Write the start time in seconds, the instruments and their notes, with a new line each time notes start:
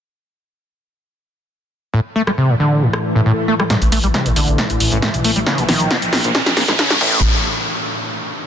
1.94 acid bass A2, synth drone A2 E3
2.16 acid bass A3
2.27 acid bass G3, cross-stick
2.38 acid bass C3
2.49 acid bass A2
2.60 acid bass D3
2.82 acid bass A2, swell
2.93 cross-stick
3.15 acid bass A2
3.26 acid bass A2
3.48 acid bass A3
3.60 acid bass G3, cross-stick
3.70 acid bass A2, synth drone A2 E3, kick, snare, closed hi-hat, riser
3.82 detuned saw bass A1, closed hi-hat
3.92 detuned saw bass A1, acid bass A3, open hi-hat
4.04 detuned saw bass A1, acid bass G3, closed hi-hat
4.14 acid bass C3, kick, snare, closed hi-hat
4.26 detuned saw bass A1, acid bass A2, closed hi-hat
4.36 detuned saw bass A1, acid bass D3, open hi-hat
4.48 detuned saw bass A1, closed hi-hat
4.58 acid bass A2, kick, snare, closed hi-hat
4.70 detuned saw bass A1, closed hi-hat
4.80 detuned saw bass A1, open hi-hat
4.92 detuned saw bass A1, acid bass A2, closed hi-hat
5.02 acid bass A2, kick, snare, closed hi-hat
5.14 detuned saw bass B1, closed hi-hat
5.24 detuned saw bass A1, acid bass A3, open hi-hat
5.36 detuned saw bass A1, acid bass G3, closed hi-hat
5.47 acid bass C#3, kick, snare, closed hi-hat
5.58 detuned saw bass A#1, acid bass A#2, closed hi-hat
5.69 detuned saw bass A#1, acid bass D#3, snare, open hi-hat
5.80 detuned saw bass A#1, closed hi-hat
5.91 acid bass A#2, kick, snare, closed hi-hat
6.02 detuned saw bass A#1, closed hi-hat
6.13 detuned saw bass A#1, snare, open hi-hat
6.24 detuned saw bass A#1, acid bass A#2, closed hi-hat
6.35 acid bass A#2, kick, snare, closed hi-hat
6.46 detuned saw bass A#1, snare, closed hi-hat
6.57 detuned saw bass A#1, acid bass A#3, snare, open hi-hat
6.68 detuned saw bass A#1, acid bass G#3, snare, closed hi-hat
6.79 acid bass C#3, kick, snare, closed hi-hat
6.90 detuned saw bass C2, acid bass A#2, snare, closed hi-hat
7.01 detuned saw bass A1, acid bass A2, kick, crash